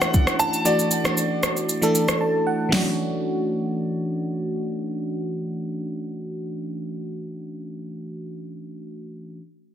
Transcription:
Already playing: fm electric piano E3 A3 C#4 D4 E4 F#4, grand piano F#5
0.01 cross-stick, shaker
0.14 kick, shaker
0.27 cross-stick, shaker
0.39 grand piano A5, shaker
0.54 shaker
0.65 fm electric piano E3 A3 D4 F#4, grand piano D5, shaker
0.79 shaker
0.91 shaker
1.04 fm electric piano E3 A3 D4 F#4, cross-stick, shaker
1.17 shaker
1.43 cross-stick, shaker
1.57 shaker
1.69 shaker
1.82 fm electric piano E3 A3 D4 A4, shaker
1.95 shaker
2.08 cross-stick, shaker
2.21 fm electric piano A5
2.47 fm electric piano F#5
2.69 fm electric piano E3 A3 C#4, snare, open hi-hat
2.74 fm electric piano D4 F#4

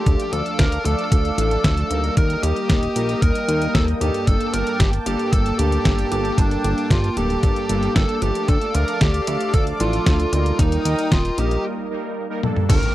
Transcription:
Already playing: analog polysynth F3 A3 D4 A4, lead electric guitar G4
0.06 analog synth bass D2, analog synth pad A4 D5 F5 D6, kick, closed hi-hat
0.20 closed hi-hat
0.33 analog synth bass D2, analog polysynth F3 A3 D4 A4, lead electric guitar A4, closed hi-hat
0.46 closed hi-hat
0.59 analog synth bass D2, lead electric guitar A#4, kick, snare, closed hi-hat
0.72 closed hi-hat
0.85 analog synth bass D2, analog polysynth F3 A3 D4 A4, lead electric guitar A4, closed hi-hat
0.99 closed hi-hat
1.12 analog synth bass D2, kick, closed hi-hat
1.25 closed hi-hat
1.38 analog synth bass A1, analog polysynth F3 A3 D4 A4, closed hi-hat
1.51 closed hi-hat
1.64 analog synth bass D2, lead electric guitar A4, kick, snare, closed hi-hat
1.77 closed hi-hat
1.91 analog synth bass D2, analog polysynth G3 A#3 D#4 A#4, closed hi-hat
2.04 closed hi-hat
2.17 analog synth bass D#2, analog synth pad A#3 D#5 G5 D#6, lead electric guitar A#4, kick, closed hi-hat
2.30 closed hi-hat
2.43 analog synth bass D#2, analog polysynth G3 A#3 D#4 A#4, lead electric guitar G4, closed hi-hat
2.56 closed hi-hat
2.70 analog synth bass D#1, lead electric guitar G4, kick, snare, closed hi-hat
2.83 closed hi-hat
2.96 analog synth bass A#1, analog polysynth G3 A#3 D#4 A#4, closed hi-hat
3.09 closed hi-hat
3.22 analog synth bass D#2, lead electric guitar A#4, kick, closed hi-hat
3.35 closed hi-hat
3.48 analog synth bass D#2, analog polysynth G3 A#3 D#4 A#4, closed hi-hat
3.62 closed hi-hat
3.75 analog synth bass D#2, lead electric guitar A4, kick, snare, closed hi-hat
3.88 closed hi-hat
4.01 analog synth bass D#2, analog polysynth G2 G3 A#3 D4 A4, lead electric guitar G4, closed hi-hat
4.14 closed hi-hat
4.27 analog synth bass G1, lead electric guitar A4, analog synth pad A5 D6, kick, closed hi-hat
4.41 closed hi-hat
4.54 analog synth bass G1, analog polysynth G2 G3 A#3 D4 A4, lead electric guitar A#4, closed hi-hat
4.67 closed hi-hat
4.80 analog synth bass G1, lead electric guitar G4, kick, snare, closed hi-hat
4.93 closed hi-hat
5.06 analog synth bass G1, analog polysynth G2 G3 A#3 D4 A4, lead electric guitar G4, closed hi-hat
5.19 closed hi-hat
5.33 analog synth bass G1, lead electric guitar A4, kick, closed hi-hat
5.46 closed hi-hat
5.59 analog synth bass D2, analog polysynth G2 G3 A#3 D4 A4, lead electric guitar G4, closed hi-hat
5.72 closed hi-hat
5.85 analog synth bass G1, kick, snare, closed hi-hat
5.99 closed hi-hat
6.12 analog synth bass G1, analog polysynth G2 G3 A#3 D4 A4, lead electric guitar G4, closed hi-hat
6.25 closed hi-hat
6.38 analog synth bass G1, lead electric guitar D4, kick, closed hi-hat
6.51 closed hi-hat
6.64 analog synth bass G1, analog polysynth G2 G3 A#3 D4 A4, closed hi-hat
6.78 closed hi-hat
6.90 analog synth bass G2, lead electric guitar F4, kick, snare, closed hi-hat
7.04 closed hi-hat
7.17 analog synth bass D1, analog polysynth G2 G3 A#3 D4 A4, lead electric guitar G4, closed hi-hat
7.30 closed hi-hat
7.43 analog synth bass G1, kick, closed hi-hat
7.56 closed hi-hat
7.69 analog synth bass G1, analog polysynth G2 G3 A#3 D4 A4, closed hi-hat
7.83 closed hi-hat
7.96 analog synth bass G1, lead electric guitar A4, kick, snare, closed hi-hat
8.09 closed hi-hat
8.22 analog synth bass G1, analog polysynth F3 A3 D4 A4, lead electric guitar G4, closed hi-hat
8.35 closed hi-hat
8.48 analog synth bass D2, analog synth pad A4 D5 F5 D6, lead electric guitar A4, kick, closed hi-hat
8.62 closed hi-hat
8.75 analog synth bass D2, analog polysynth F3 A3 D4 A4, lead electric guitar A#4, closed hi-hat
8.88 closed hi-hat
9.01 analog synth bass D2, lead electric guitar G4, kick, snare, closed hi-hat
9.14 closed hi-hat
9.27 analog synth bass D2, analog polysynth F3 A3 D4 A4, lead electric guitar G4, closed hi-hat
9.40 closed hi-hat
9.54 analog synth bass D2, lead electric guitar A4, kick, closed hi-hat
9.67 closed hi-hat
9.80 analog synth bass A1, analog polysynth F3 A3 D4 A4, lead electric guitar F4, closed hi-hat
9.93 closed hi-hat
10.06 analog synth bass D2, kick, snare, closed hi-hat
10.20 closed hi-hat
10.33 analog synth bass D2, analog polysynth G3 A#3 D#4 A#4, lead electric guitar F4, closed hi-hat
10.46 closed hi-hat
10.59 analog synth bass D#2, lead electric guitar D#4, analog synth pad A#4 D#5 G5 D#6, kick, closed hi-hat
10.72 closed hi-hat
10.85 analog synth bass D#2, analog polysynth G3 A#3 D#4 A#4, closed hi-hat
10.99 closed hi-hat
11.12 analog synth bass D#1, lead electric guitar F4, kick, snare, closed hi-hat
11.25 closed hi-hat
11.38 analog synth bass A#1, analog polysynth G3 A#3 D#4 A#4, lead electric guitar G4, closed hi-hat
11.51 closed hi-hat
11.90 analog polysynth G3 A#3 D#4 A#4
12.30 analog polysynth G3 A#3 D#4 A#4
12.43 analog polysynth G2 G3 A#3 D4 A4, high tom
12.56 mid tom
12.70 analog synth bass G1, analog synth pad A#3 G5 A5 D6, lead electric guitar A#4, kick, closed hi-hat, crash, impact
12.83 closed hi-hat

